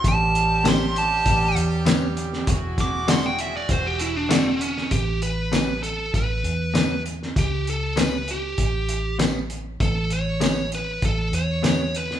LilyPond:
<<
  \new Staff \with { instrumentName = "Lead electric guitar" } { \time 4/4 \key a \mixolydian \tempo 4 = 98 a''4 c'''8 a''4 r4. | r8 d'''8 c'''16 g''16 e''16 d''16 c''16 g'16 e'16 d'16 c'8 cis'8 | g'8 b'4 a'8 b'4. r8 | g'8 a'8 b'8 g'4. r4 |
a'8 cis''4 b'8 a'8 cis''4 b'8 | }
  \new Staff \with { instrumentName = "Horn section" } { \time 4/4 \key a \mixolydian <g b cis' g'>1 | <fis gis e' fis'>1 | r1 | r1 |
r1 | }
  \new Staff \with { instrumentName = "Clean electric guitar" } { \time 4/4 \key a \mixolydian r4 <a, g b cis'>8 r4. <a, g b cis'>8 r8 | r4 <e gis d' fis'>8 r4. <e gis d' fis'>8 r8 | r4 <a, g b cis'>8 r4. <a, g b cis'>8 r8 | r4 <a, g b cis'>8 r4. <a, g b cis'>8 r8 |
r4 <a, g b cis'>8 r4. <a, g b cis'>8 r8 | }
  \new Staff \with { instrumentName = "Fingered electric bass" } { \clef bass \time 4/4 \key a \mixolydian a,,2 a,,8 e,4. | e,,2 e,,2 | a,,2 a,,8 e,4. | cis,2 a,,2 |
a,,2 a,,8 e,4. | }
  \new DrumStaff \with { instrumentName = "Drums" } \drummode { \time 4/4 <hh bd>8 hh8 <hh sn tamb>8 hh8 <hh bd>8 hh8 <hh sn tamb>8 hh16 sn16 | <hh bd>8 <hh bd sn>8 <hh sn tamb>8 hh8 <hh bd>8 hh8 <hh sn tamb>8 hh16 sn16 | <hh bd>8 hh8 <hh sn tamb>8 hh8 <hh bd>8 hh8 <hh sn tamb>8 hh16 sn16 | <hh bd>8 hh8 <hh sn tamb>8 hh8 <hh bd>8 hh8 <hh sn tamb>8 hh8 |
<hh bd>8 hh8 <hh sn tamb>8 hh8 <hh bd>8 hh8 <hh sn tamb>8 hh16 sn16 | }
>>